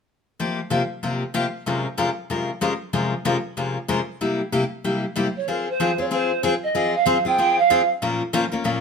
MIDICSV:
0, 0, Header, 1, 3, 480
1, 0, Start_track
1, 0, Key_signature, -4, "minor"
1, 0, Tempo, 317628
1, 589, Time_signature, 4, 2, 24, 8
1, 13306, End_track
2, 0, Start_track
2, 0, Title_t, "Pan flute"
2, 0, Program_c, 0, 75
2, 8102, Note_on_c, 0, 73, 64
2, 8299, Note_on_c, 0, 70, 72
2, 8322, Note_off_c, 0, 73, 0
2, 8570, Note_off_c, 0, 70, 0
2, 8593, Note_on_c, 0, 72, 81
2, 9023, Note_off_c, 0, 72, 0
2, 9069, Note_on_c, 0, 73, 75
2, 9150, Note_off_c, 0, 73, 0
2, 9257, Note_on_c, 0, 72, 80
2, 9692, Note_off_c, 0, 72, 0
2, 9726, Note_on_c, 0, 72, 76
2, 9817, Note_off_c, 0, 72, 0
2, 10021, Note_on_c, 0, 75, 84
2, 10455, Note_off_c, 0, 75, 0
2, 10507, Note_on_c, 0, 77, 95
2, 10938, Note_off_c, 0, 77, 0
2, 10983, Note_on_c, 0, 79, 108
2, 11453, Note_on_c, 0, 77, 96
2, 11476, Note_off_c, 0, 79, 0
2, 11922, Note_off_c, 0, 77, 0
2, 13306, End_track
3, 0, Start_track
3, 0, Title_t, "Steel-string acoustic guitar"
3, 0, Program_c, 1, 25
3, 597, Note_on_c, 1, 48, 53
3, 601, Note_on_c, 1, 53, 55
3, 604, Note_on_c, 1, 58, 63
3, 608, Note_on_c, 1, 65, 58
3, 609, Note_on_c, 1, 67, 65
3, 891, Note_off_c, 1, 48, 0
3, 893, Note_off_c, 1, 53, 0
3, 894, Note_off_c, 1, 58, 0
3, 896, Note_off_c, 1, 65, 0
3, 897, Note_off_c, 1, 67, 0
3, 1062, Note_on_c, 1, 48, 70
3, 1066, Note_on_c, 1, 53, 73
3, 1074, Note_on_c, 1, 58, 74
3, 1074, Note_on_c, 1, 65, 75
3, 1077, Note_on_c, 1, 67, 83
3, 1227, Note_off_c, 1, 48, 0
3, 1229, Note_off_c, 1, 53, 0
3, 1233, Note_off_c, 1, 58, 0
3, 1233, Note_off_c, 1, 65, 0
3, 1235, Note_off_c, 1, 67, 0
3, 1553, Note_on_c, 1, 48, 49
3, 1555, Note_on_c, 1, 53, 54
3, 1562, Note_on_c, 1, 58, 53
3, 1562, Note_on_c, 1, 65, 61
3, 1563, Note_on_c, 1, 67, 61
3, 1850, Note_off_c, 1, 48, 0
3, 1851, Note_off_c, 1, 53, 0
3, 1854, Note_off_c, 1, 58, 0
3, 1854, Note_off_c, 1, 65, 0
3, 1855, Note_off_c, 1, 67, 0
3, 2024, Note_on_c, 1, 48, 76
3, 2028, Note_on_c, 1, 53, 74
3, 2030, Note_on_c, 1, 58, 81
3, 2034, Note_on_c, 1, 65, 74
3, 2036, Note_on_c, 1, 67, 86
3, 2189, Note_off_c, 1, 48, 0
3, 2191, Note_off_c, 1, 53, 0
3, 2192, Note_off_c, 1, 58, 0
3, 2194, Note_off_c, 1, 65, 0
3, 2195, Note_off_c, 1, 67, 0
3, 2512, Note_on_c, 1, 48, 59
3, 2515, Note_on_c, 1, 53, 58
3, 2521, Note_on_c, 1, 56, 61
3, 2522, Note_on_c, 1, 61, 59
3, 2529, Note_on_c, 1, 65, 59
3, 2530, Note_on_c, 1, 70, 64
3, 2810, Note_off_c, 1, 48, 0
3, 2812, Note_off_c, 1, 53, 0
3, 2815, Note_off_c, 1, 56, 0
3, 2815, Note_off_c, 1, 61, 0
3, 2819, Note_off_c, 1, 65, 0
3, 2819, Note_off_c, 1, 70, 0
3, 2984, Note_on_c, 1, 48, 68
3, 2988, Note_on_c, 1, 53, 73
3, 2992, Note_on_c, 1, 56, 77
3, 2993, Note_on_c, 1, 65, 74
3, 2994, Note_on_c, 1, 61, 77
3, 2996, Note_on_c, 1, 70, 77
3, 3150, Note_off_c, 1, 48, 0
3, 3152, Note_off_c, 1, 53, 0
3, 3154, Note_off_c, 1, 56, 0
3, 3154, Note_off_c, 1, 65, 0
3, 3155, Note_off_c, 1, 61, 0
3, 3156, Note_off_c, 1, 70, 0
3, 3473, Note_on_c, 1, 48, 51
3, 3475, Note_on_c, 1, 53, 56
3, 3478, Note_on_c, 1, 56, 51
3, 3480, Note_on_c, 1, 61, 61
3, 3488, Note_on_c, 1, 65, 57
3, 3488, Note_on_c, 1, 70, 62
3, 3772, Note_off_c, 1, 48, 0
3, 3772, Note_off_c, 1, 53, 0
3, 3774, Note_off_c, 1, 56, 0
3, 3775, Note_off_c, 1, 61, 0
3, 3779, Note_off_c, 1, 65, 0
3, 3779, Note_off_c, 1, 70, 0
3, 3945, Note_on_c, 1, 48, 71
3, 3946, Note_on_c, 1, 53, 69
3, 3952, Note_on_c, 1, 56, 87
3, 3954, Note_on_c, 1, 61, 75
3, 3957, Note_on_c, 1, 65, 82
3, 3961, Note_on_c, 1, 70, 85
3, 4111, Note_off_c, 1, 48, 0
3, 4111, Note_off_c, 1, 53, 0
3, 4115, Note_off_c, 1, 56, 0
3, 4115, Note_off_c, 1, 61, 0
3, 4117, Note_off_c, 1, 65, 0
3, 4119, Note_off_c, 1, 70, 0
3, 4428, Note_on_c, 1, 48, 53
3, 4430, Note_on_c, 1, 53, 61
3, 4432, Note_on_c, 1, 56, 60
3, 4434, Note_on_c, 1, 61, 66
3, 4437, Note_on_c, 1, 70, 69
3, 4441, Note_on_c, 1, 65, 60
3, 4729, Note_off_c, 1, 48, 0
3, 4730, Note_off_c, 1, 53, 0
3, 4731, Note_off_c, 1, 56, 0
3, 4732, Note_off_c, 1, 61, 0
3, 4734, Note_off_c, 1, 70, 0
3, 4736, Note_off_c, 1, 65, 0
3, 4909, Note_on_c, 1, 48, 66
3, 4914, Note_on_c, 1, 56, 80
3, 4915, Note_on_c, 1, 53, 81
3, 4917, Note_on_c, 1, 61, 72
3, 4921, Note_on_c, 1, 70, 78
3, 4923, Note_on_c, 1, 65, 83
3, 5073, Note_off_c, 1, 48, 0
3, 5076, Note_off_c, 1, 53, 0
3, 5076, Note_off_c, 1, 56, 0
3, 5077, Note_off_c, 1, 61, 0
3, 5079, Note_off_c, 1, 70, 0
3, 5080, Note_off_c, 1, 65, 0
3, 5392, Note_on_c, 1, 48, 58
3, 5396, Note_on_c, 1, 53, 54
3, 5398, Note_on_c, 1, 56, 51
3, 5401, Note_on_c, 1, 61, 58
3, 5402, Note_on_c, 1, 65, 56
3, 5404, Note_on_c, 1, 70, 60
3, 5691, Note_off_c, 1, 48, 0
3, 5694, Note_off_c, 1, 53, 0
3, 5695, Note_off_c, 1, 56, 0
3, 5696, Note_off_c, 1, 61, 0
3, 5696, Note_off_c, 1, 65, 0
3, 5697, Note_off_c, 1, 70, 0
3, 5869, Note_on_c, 1, 48, 75
3, 5870, Note_on_c, 1, 53, 72
3, 5874, Note_on_c, 1, 56, 71
3, 5876, Note_on_c, 1, 65, 82
3, 5877, Note_on_c, 1, 61, 77
3, 5879, Note_on_c, 1, 70, 90
3, 6034, Note_off_c, 1, 48, 0
3, 6034, Note_off_c, 1, 53, 0
3, 6036, Note_off_c, 1, 56, 0
3, 6037, Note_off_c, 1, 65, 0
3, 6038, Note_off_c, 1, 61, 0
3, 6038, Note_off_c, 1, 70, 0
3, 6359, Note_on_c, 1, 48, 57
3, 6361, Note_on_c, 1, 55, 53
3, 6364, Note_on_c, 1, 58, 60
3, 6369, Note_on_c, 1, 64, 64
3, 6369, Note_on_c, 1, 67, 59
3, 6655, Note_off_c, 1, 48, 0
3, 6656, Note_off_c, 1, 55, 0
3, 6657, Note_off_c, 1, 58, 0
3, 6660, Note_off_c, 1, 64, 0
3, 6660, Note_off_c, 1, 67, 0
3, 6836, Note_on_c, 1, 48, 67
3, 6837, Note_on_c, 1, 55, 68
3, 6842, Note_on_c, 1, 58, 78
3, 6845, Note_on_c, 1, 64, 75
3, 6847, Note_on_c, 1, 67, 88
3, 6997, Note_off_c, 1, 48, 0
3, 6997, Note_off_c, 1, 55, 0
3, 7000, Note_off_c, 1, 58, 0
3, 7002, Note_off_c, 1, 64, 0
3, 7002, Note_off_c, 1, 67, 0
3, 7320, Note_on_c, 1, 48, 59
3, 7320, Note_on_c, 1, 55, 54
3, 7328, Note_on_c, 1, 58, 57
3, 7329, Note_on_c, 1, 64, 60
3, 7333, Note_on_c, 1, 67, 62
3, 7615, Note_off_c, 1, 48, 0
3, 7615, Note_off_c, 1, 55, 0
3, 7619, Note_off_c, 1, 58, 0
3, 7619, Note_off_c, 1, 64, 0
3, 7621, Note_off_c, 1, 67, 0
3, 7791, Note_on_c, 1, 48, 73
3, 7799, Note_on_c, 1, 55, 76
3, 7801, Note_on_c, 1, 58, 78
3, 7805, Note_on_c, 1, 67, 80
3, 7806, Note_on_c, 1, 64, 84
3, 7954, Note_off_c, 1, 48, 0
3, 7958, Note_off_c, 1, 55, 0
3, 7959, Note_off_c, 1, 58, 0
3, 7961, Note_off_c, 1, 67, 0
3, 7962, Note_off_c, 1, 64, 0
3, 8277, Note_on_c, 1, 53, 58
3, 8284, Note_on_c, 1, 60, 60
3, 8284, Note_on_c, 1, 65, 62
3, 8287, Note_on_c, 1, 68, 66
3, 8573, Note_off_c, 1, 53, 0
3, 8577, Note_off_c, 1, 60, 0
3, 8577, Note_off_c, 1, 65, 0
3, 8578, Note_off_c, 1, 68, 0
3, 8762, Note_on_c, 1, 53, 75
3, 8770, Note_on_c, 1, 60, 80
3, 8771, Note_on_c, 1, 68, 86
3, 8776, Note_on_c, 1, 65, 80
3, 8919, Note_off_c, 1, 53, 0
3, 8923, Note_off_c, 1, 60, 0
3, 8924, Note_off_c, 1, 68, 0
3, 8926, Note_off_c, 1, 65, 0
3, 9040, Note_on_c, 1, 68, 57
3, 9046, Note_on_c, 1, 65, 44
3, 9058, Note_on_c, 1, 60, 40
3, 9219, Note_off_c, 1, 60, 0
3, 9222, Note_off_c, 1, 65, 0
3, 9228, Note_off_c, 1, 68, 0
3, 9229, Note_on_c, 1, 53, 60
3, 9237, Note_on_c, 1, 60, 66
3, 9240, Note_on_c, 1, 65, 66
3, 9244, Note_on_c, 1, 68, 62
3, 9529, Note_off_c, 1, 53, 0
3, 9532, Note_off_c, 1, 60, 0
3, 9534, Note_off_c, 1, 65, 0
3, 9536, Note_off_c, 1, 68, 0
3, 9719, Note_on_c, 1, 53, 78
3, 9723, Note_on_c, 1, 60, 82
3, 9723, Note_on_c, 1, 65, 77
3, 9734, Note_on_c, 1, 68, 94
3, 9876, Note_off_c, 1, 53, 0
3, 9879, Note_off_c, 1, 60, 0
3, 9879, Note_off_c, 1, 65, 0
3, 9884, Note_off_c, 1, 68, 0
3, 10195, Note_on_c, 1, 53, 56
3, 10196, Note_on_c, 1, 60, 64
3, 10199, Note_on_c, 1, 65, 64
3, 10205, Note_on_c, 1, 68, 72
3, 10490, Note_off_c, 1, 53, 0
3, 10491, Note_off_c, 1, 60, 0
3, 10492, Note_off_c, 1, 65, 0
3, 10495, Note_off_c, 1, 68, 0
3, 10663, Note_on_c, 1, 53, 82
3, 10674, Note_on_c, 1, 65, 94
3, 10675, Note_on_c, 1, 60, 87
3, 10675, Note_on_c, 1, 68, 82
3, 10828, Note_off_c, 1, 53, 0
3, 10833, Note_off_c, 1, 65, 0
3, 10834, Note_off_c, 1, 60, 0
3, 10834, Note_off_c, 1, 68, 0
3, 10955, Note_on_c, 1, 68, 54
3, 10970, Note_on_c, 1, 65, 52
3, 10980, Note_on_c, 1, 60, 41
3, 11143, Note_off_c, 1, 68, 0
3, 11146, Note_off_c, 1, 60, 0
3, 11147, Note_off_c, 1, 65, 0
3, 11158, Note_on_c, 1, 53, 64
3, 11164, Note_on_c, 1, 60, 61
3, 11166, Note_on_c, 1, 65, 60
3, 11170, Note_on_c, 1, 68, 62
3, 11451, Note_off_c, 1, 53, 0
3, 11454, Note_off_c, 1, 60, 0
3, 11455, Note_off_c, 1, 65, 0
3, 11457, Note_off_c, 1, 68, 0
3, 11638, Note_on_c, 1, 53, 83
3, 11641, Note_on_c, 1, 60, 81
3, 11645, Note_on_c, 1, 65, 85
3, 11650, Note_on_c, 1, 68, 94
3, 11794, Note_off_c, 1, 53, 0
3, 11796, Note_off_c, 1, 60, 0
3, 11798, Note_off_c, 1, 65, 0
3, 11800, Note_off_c, 1, 68, 0
3, 12118, Note_on_c, 1, 46, 65
3, 12121, Note_on_c, 1, 58, 65
3, 12123, Note_on_c, 1, 53, 59
3, 12126, Note_on_c, 1, 61, 66
3, 12127, Note_on_c, 1, 65, 64
3, 12133, Note_on_c, 1, 70, 71
3, 12410, Note_off_c, 1, 46, 0
3, 12412, Note_off_c, 1, 58, 0
3, 12413, Note_off_c, 1, 53, 0
3, 12414, Note_off_c, 1, 61, 0
3, 12415, Note_off_c, 1, 65, 0
3, 12418, Note_off_c, 1, 70, 0
3, 12590, Note_on_c, 1, 46, 80
3, 12593, Note_on_c, 1, 53, 81
3, 12594, Note_on_c, 1, 58, 83
3, 12597, Note_on_c, 1, 61, 84
3, 12601, Note_on_c, 1, 70, 96
3, 12603, Note_on_c, 1, 65, 100
3, 12749, Note_off_c, 1, 46, 0
3, 12751, Note_off_c, 1, 53, 0
3, 12751, Note_off_c, 1, 58, 0
3, 12753, Note_off_c, 1, 61, 0
3, 12755, Note_off_c, 1, 70, 0
3, 12756, Note_off_c, 1, 65, 0
3, 12870, Note_on_c, 1, 70, 55
3, 12878, Note_on_c, 1, 65, 51
3, 12890, Note_on_c, 1, 61, 50
3, 12896, Note_on_c, 1, 58, 44
3, 13051, Note_off_c, 1, 61, 0
3, 13052, Note_off_c, 1, 58, 0
3, 13052, Note_off_c, 1, 70, 0
3, 13054, Note_off_c, 1, 65, 0
3, 13060, Note_on_c, 1, 46, 56
3, 13066, Note_on_c, 1, 53, 59
3, 13069, Note_on_c, 1, 61, 62
3, 13070, Note_on_c, 1, 58, 64
3, 13070, Note_on_c, 1, 70, 66
3, 13072, Note_on_c, 1, 65, 65
3, 13306, Note_off_c, 1, 46, 0
3, 13306, Note_off_c, 1, 53, 0
3, 13306, Note_off_c, 1, 58, 0
3, 13306, Note_off_c, 1, 61, 0
3, 13306, Note_off_c, 1, 65, 0
3, 13306, Note_off_c, 1, 70, 0
3, 13306, End_track
0, 0, End_of_file